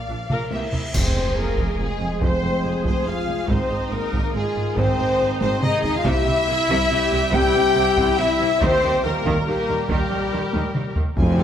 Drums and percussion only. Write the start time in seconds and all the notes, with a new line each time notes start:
0.30 taiko mid
0.51 taiko high
0.72 taiko low
0.94 concert bass drum, taiko, crash
1.58 taiko
2.21 taiko
2.85 taiko
3.49 taiko
4.13 taiko
4.77 taiko
5.41 taiko high
5.63 taiko mid
5.84 taiko low
6.05 taiko
6.69 taiko
7.33 taiko
7.97 taiko
8.61 taiko
9.25 taiko
9.89 taiko
10.54 taiko high
10.75 taiko mid
10.96 taiko low
11.17 taiko, tam-tam
11.38 taiko rim